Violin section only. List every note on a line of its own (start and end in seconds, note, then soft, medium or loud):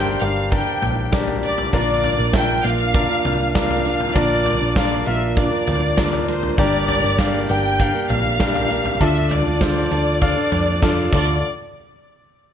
0.00 0.20 G5 medium
0.22 0.52 F5 medium
0.53 1.09 G5 medium
1.43 1.71 D5 medium
1.74 2.30 D5 loud
2.35 2.65 G5 loud
2.65 3.54 F5 loud
3.56 4.12 F5 loud
4.15 4.76 D5 loud
4.77 5.05 D5 medium
5.08 5.35 E5 medium
5.38 6.24 D5 medium
6.28 6.56 C5 medium
6.58 7.45 D5 loud
7.49 8.06 G5 loud
8.10 9.01 F5 loud
9.01 9.31 E5 loud
9.32 11.12 D5 medium
11.13 11.41 D5 medium